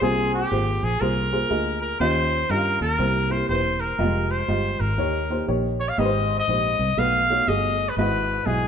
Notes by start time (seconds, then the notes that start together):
0.01 C2 C3 A#3 F4 G#4 C5
0.34 G4
0.51 G#1 A#3 F4 G#4 C5
0.83 A#1 G#4
1.00 C2 A#3 F4 G#4 A#4 C5
1.32 A#3 F4 G#4 C5
1.49 D2 A#3 F4 G#4 D#5
1.81 A#4
2.00 D#2 D#3 C#4 F4 G4 C5 D#5
2.50 G2 C#4 F4 G4 A#4 D#5
2.57 F5
2.81 D#2 A#4
2.98 C2 C3 A#3 E4 G4 C5
3.29 A#3 E4 G4 A#4 C5
3.49 E1 A#3 E4 G4 B4 C5
3.55 C5
3.80 A#4
3.98 F1 G3 F4 G4 D#5
4.04 G#3
4.31 C5
4.48 G1 G#3 F4 G4 D#5
4.80 G#1 A#4
4.97 D#2 D#3 A#3 D#4 G4 C#5
5.30 A#3 D#4 G4 C5
5.47 A#1 A#3 D#4 G4 C#5
5.80 C#5
5.89 F5
5.98 G#1 G#2 G#3 D#4 G4 B4 D#5
6.05 C5
6.39 D#5
6.48 A#1 G#3 D#4 G4 C5
6.79 C2
6.97 B1 B2 A3 D#4 F#4 B4 F5
7.30 A3 D#4 F#4 C#5
7.47 G1 A3 D#4 F#4 G#4 D#5
7.89 B4
7.97 G#1 G#2 G#3 E4 F#4 B4 D#5
8.45 B1 G#3 E4 F#4 G#4 D#5